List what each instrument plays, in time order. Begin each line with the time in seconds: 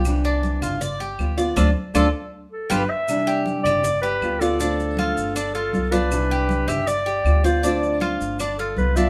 Already playing: upright bass C2, cuban tres G4
0.04 nylon-string guitar C3 E3 G3 D4 E4, claves, maracas
0.24 cuban tres D4, maracas
0.43 high conga, maracas
0.61 upright bass G1, cuban tres F4, high conga, low conga, claves, maracas
0.81 cuban tres D5, muted nylon-string guitar stroke, high conga, low conga, maracas
1.00 cuban tres G4, high conga, maracas
1.19 upright bass D2, nylon-string guitar G3 B3 F4, high conga, claves, maracas
1.37 nylon-string guitar B3 F4, cuban tres D5, high conga, maracas
1.56 upright bass D2, nylon-string guitar A3 C4 D4, cuban tres D4 F4 A4, high conga, claves, maracas
1.94 upright bass D2, nylon-string guitar A3 C4 D4, cuban tres D4 F4 A4, high conga, claves, maracas
2.52 clarinet A4
2.70 upright bass G1, nylon-string guitar G3 B3 D4, cuban tres F4 G4 B4, clarinet B4, high conga, claves, maracas
2.90 clarinet E5
3.08 nylon-string guitar C3 E3 G3 D4 E4, high conga, claves, maracas
3.27 cuban tres G4, high conga, maracas
3.46 high conga, maracas
3.64 upright bass G1, cuban tres G4, clarinet D5, high conga, low conga, claves, maracas
3.83 cuban tres D5, muted nylon-string guitar stroke, high conga, low conga, maracas
4.02 cuban tres G4, clarinet B4, high conga, maracas
4.21 upright bass D2, nylon-string guitar G3 B3 F4, high conga, claves, maracas
4.40 nylon-string guitar B3 F4, clarinet A4, cuban tres D5, high conga, maracas
4.59 nylon-string guitar D3 A3 C4 F4, cuban tres D4, high conga, maracas
4.78 high conga, maracas
4.97 cuban tres F4, high conga, claves, maracas
5.17 upright bass G1, high conga, maracas
5.35 cuban tres D4, muted nylon-string guitar stroke, high conga, claves, maracas
5.54 cuban tres F4, clarinet A4, high conga, maracas
5.72 upright bass C2, nylon-string guitar G3 B3 F4, high conga, maracas
5.91 nylon-string guitar B3 F4, cuban tres D4, clarinet B4, high conga, maracas
6.10 nylon-string guitar C3 E3 G3 D4 E4, high conga, claves, maracas
6.30 cuban tres G4, high conga, maracas
6.49 high conga, maracas
6.67 upright bass G1, cuban tres G4, clarinet E5, high conga, low conga, claves, maracas
6.87 cuban tres D5, clarinet D5, muted nylon-string guitar stroke, high conga, maracas
7.06 cuban tres G4, high conga, maracas
7.24 upright bass D2, nylon-string guitar G3 B3 F4, high conga, claves, maracas
7.44 nylon-string guitar B3 F4, clarinet C5, cuban tres D5, high conga, maracas
7.62 nylon-string guitar D3 A3 C4 F4, cuban tres D4, clarinet D5, high conga, maracas
7.81 high conga, maracas
8.00 cuban tres F4, high conga, claves, maracas
8.19 upright bass G1, high conga, maracas
8.39 cuban tres D4, muted nylon-string guitar stroke, high conga, claves, maracas
8.58 cuban tres F4, clarinet A4, high conga, maracas
8.76 upright bass C2, nylon-string guitar G3 B3 F4, clarinet B4, high conga, maracas
8.96 nylon-string guitar B3 F4, cuban tres D4, clarinet E5, high conga, maracas